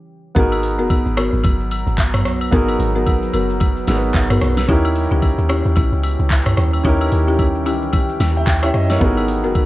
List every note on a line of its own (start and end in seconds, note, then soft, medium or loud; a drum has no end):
0.35 0.81 G#1 loud
0.35 4.65 F#3 medium
0.35 2.48 B3 medium
0.35 0.47 B3 loud
0.35 4.65 B3 medium
0.35 2.48 D#4 medium
0.35 0.47 F#4 medium
0.35 2.49 F#4 medium
0.35 2.49 G#4 medium
0.35 0.47 A#4 loud
0.35 4.65 A#5 medium
0.35 kick loud
0.35 shaker medium
0.39 2.50 A#4 medium
0.52 high agogo medium
0.52 shaker medium
0.63 open hi-hat medium
0.63 shaker medium
0.79 1.03 F#1 medium
0.79 0.87 B3 medium
0.79 0.87 F#4 medium
0.79 0.87 A#4 medium
0.79 shaker medium
0.90 kick loud
0.90 high agogo medium
0.90 shaker medium
1.06 1.30 G#1 medium
1.06 shaker medium
1.17 1.28 B3 medium
1.17 1.28 F#4 medium
1.17 1.28 A#4 medium
1.17 cross-stick loud
1.17 open hi-hat medium
1.17 high agogo medium
1.17 shaker loud
1.33 1.43 G#1 medium
1.33 shaker soft
1.44 1.62 F#1 medium
1.44 kick loud
1.44 high agogo medium
1.44 shaker medium
1.60 1.84 G#1 medium
1.60 shaker medium
1.71 open hi-hat medium
1.71 high agogo medium
1.71 shaker loud
1.87 2.27 G#1 loud
1.87 shaker medium
1.98 kick loud
1.98 clap medium
1.98 low woodblock medium
1.98 shaker medium
2.14 cross-stick medium
2.14 mid tom medium
2.14 high agogo medium
2.14 shaker medium
2.25 2.50 B1 loud
2.25 cross-stick medium
2.25 open hi-hat soft
2.25 shaker medium
2.41 high agogo medium
2.41 shaker medium
2.51 2.77 G#1 loud
2.51 3.84 B3 medium
2.51 2.63 B3 loud
2.51 3.85 D#4 medium
2.51 2.63 F#4 medium
2.51 3.85 F#4 medium
2.51 3.86 G#4 medium
2.51 2.64 A#4 loud
2.51 kick loud
2.51 shaker medium
2.56 3.87 A#4 medium
2.68 high agogo medium
2.68 shaker medium
2.79 3.29 G#1 loud
2.79 open hi-hat medium
2.79 shaker medium
2.95 3.03 B3 medium
2.95 3.03 F#4 medium
2.95 3.03 A#4 medium
2.95 shaker medium
3.06 kick loud
3.06 high agogo medium
3.06 shaker medium
3.22 shaker medium
3.33 3.84 F#1 medium
3.33 3.45 B3 medium
3.33 3.45 F#4 medium
3.33 3.45 A#4 medium
3.33 open hi-hat medium
3.33 high agogo medium
3.33 shaker loud
3.49 shaker medium
3.60 kick loud
3.60 high agogo medium
3.60 shaker medium
3.76 shaker medium
3.87 4.12 G#1 loud
3.87 4.69 B3 medium
3.87 4.67 D#4 medium
3.87 4.69 F#4 medium
3.87 4.70 G#4 medium
3.87 3.96 A#4 medium
3.87 snare medium
3.87 open hi-hat medium
3.87 high agogo medium
3.87 shaker loud
3.96 4.73 B4 medium
4.03 shaker medium
4.15 4.39 G#1 loud
4.15 kick loud
4.15 clap medium
4.15 low woodblock medium
4.15 shaker medium
4.30 4.38 B3 medium
4.30 4.38 F#4 medium
4.30 4.38 A#4 medium
4.30 cross-stick medium
4.30 mid tom loud
4.30 high agogo medium
4.30 shaker medium
4.41 4.66 B1 loud
4.41 cross-stick medium
4.41 open hi-hat soft
4.41 shaker medium
4.57 snare medium
4.57 high agogo medium
4.57 shaker medium
4.68 5.07 D#2 loud
4.68 8.97 E3 medium
4.68 6.80 C#4 medium
4.68 6.83 C#4 medium
4.68 4.80 C#4 medium
4.68 6.81 D#4 medium
4.68 4.80 E4 medium
4.68 6.81 E4 medium
4.68 8.97 G4 medium
4.68 4.80 G4 loud
4.68 6.82 G4 medium
4.68 kick loud
4.68 shaker medium
4.72 6.83 A#4 medium
4.85 high agogo medium
4.85 shaker medium
4.96 open hi-hat medium
4.96 shaker medium
5.11 5.36 C#2 medium
5.11 5.19 C#4 medium
5.11 5.19 E4 medium
5.11 5.20 G4 medium
5.11 shaker medium
5.22 kick loud
5.22 high agogo medium
5.22 shaker medium
5.38 5.63 D#2 medium
5.38 shaker medium
5.49 5.61 C#4 medium
5.49 5.61 E4 medium
5.49 5.61 G4 medium
5.49 cross-stick loud
5.49 open hi-hat medium
5.49 high agogo medium
5.49 shaker loud
5.66 5.76 D#2 medium
5.66 shaker medium
5.76 5.91 A#1 medium
5.76 kick loud
5.76 high agogo medium
5.76 shaker medium
5.93 6.17 C#2 medium
5.93 shaker medium
6.04 open hi-hat medium
6.04 high agogo medium
6.04 shaker loud
6.19 6.54 C#2 medium
6.19 shaker medium
6.31 kick loud
6.31 clap loud
6.31 low woodblock medium
6.31 shaker medium
6.46 cross-stick medium
6.46 mid tom loud
6.46 high agogo medium
6.46 shaker medium
6.57 6.82 D#2 loud
6.57 cross-stick medium
6.57 open hi-hat soft
6.57 shaker medium
6.73 high agogo medium
6.73 shaker medium
6.84 7.09 D#2 loud
6.84 8.99 D#3 medium
6.84 8.96 C#4 medium
6.84 6.96 C#4 loud
6.84 8.97 D#4 medium
6.84 6.96 E4 medium
6.84 8.98 E4 medium
6.84 6.96 G4 loud
6.84 8.98 G4 medium
6.84 kick loud
6.84 shaker medium
6.88 8.19 A#4 medium
7.01 high agogo medium
7.01 shaker medium
7.12 7.67 D#2 loud
7.12 open hi-hat medium
7.12 shaker medium
7.27 7.35 C#4 medium
7.27 7.36 E4 medium
7.27 7.36 G4 medium
7.27 shaker medium
7.39 kick loud
7.39 high agogo medium
7.39 shaker medium
7.54 shaker medium
7.66 8.16 C#2 medium
7.66 7.77 C#4 medium
7.66 7.77 E4 medium
7.66 7.77 G4 medium
7.66 open hi-hat medium
7.66 high agogo medium
7.66 shaker loud
7.82 shaker medium
7.93 kick loud
7.93 high agogo medium
7.93 shaker medium
8.09 shaker medium
8.20 8.44 D#2 loud
8.20 snare medium
8.20 open hi-hat medium
8.20 high agogo medium
8.20 shaker loud
8.35 8.62 E5 medium
8.35 8.62 G5 medium
8.35 shaker medium
8.47 8.71 D#2 loud
8.47 kick loud
8.47 clap loud
8.47 low woodblock medium
8.47 shaker medium
8.62 8.71 C#4 medium
8.62 8.71 E4 medium
8.62 8.71 G4 medium
8.62 8.74 C#5 medium
8.62 8.74 E5 medium
8.62 cross-stick medium
8.62 high agogo medium
8.62 shaker medium
8.74 8.98 F#2 loud
8.74 8.89 D#5 medium
8.74 cross-stick medium
8.74 open hi-hat soft
8.74 shaker medium
8.90 9.03 A#4 medium
8.90 9.16 C#5 medium
8.90 snare medium
8.90 high agogo medium
8.90 shaker medium
9.00 9.45 G#1 loud
9.00 9.66 F#3 medium
9.00 9.66 B3 medium
9.00 9.12 B3 loud
9.00 9.66 B3 medium
9.00 9.66 D#4 medium
9.00 9.12 F#4 medium
9.00 9.66 F#4 medium
9.00 9.66 G#4 medium
9.00 9.66 A#4 loud
9.00 9.12 A#4 loud
9.00 kick loud
9.00 shaker medium
9.04 9.66 A#4 medium
9.17 high agogo medium
9.17 shaker medium
9.28 open hi-hat soft
9.28 shaker medium
9.44 9.66 F#1 medium
9.44 9.52 B3 medium
9.44 9.52 F#4 medium
9.44 9.52 A#4 medium
9.44 shaker medium
9.55 kick loud
9.55 high agogo medium
9.55 shaker medium